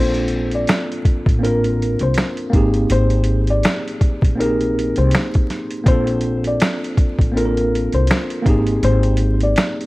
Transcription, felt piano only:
0.00 0.50 C5 loud
0.55 0.87 D5 medium
1.43 2.01 A#4 medium
2.03 2.87 C5 medium
2.92 3.46 C5 medium
3.50 3.83 D5 medium
4.40 4.94 A#4 medium
4.98 5.83 C5 medium
5.88 6.42 C5 loud
6.47 6.79 D5 medium
7.37 7.94 A#4 medium
7.94 8.79 C5 medium
8.84 9.39 C5 medium
9.43 9.76 D5 medium

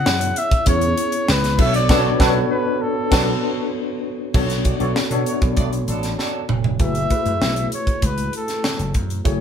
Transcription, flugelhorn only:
0.00 0.40 F#5 loud
0.38 0.68 E5 loud
0.69 1.25 C#5 loud
1.30 1.58 B4 medium
1.60 1.74 E5 loud
1.75 2.21 D5 loud
2.51 2.83 B4 medium
2.82 3.73 A4 medium
6.81 7.69 E5 loud
7.74 8.07 C#5 medium
8.05 8.35 B4 medium
8.36 8.92 A4 medium

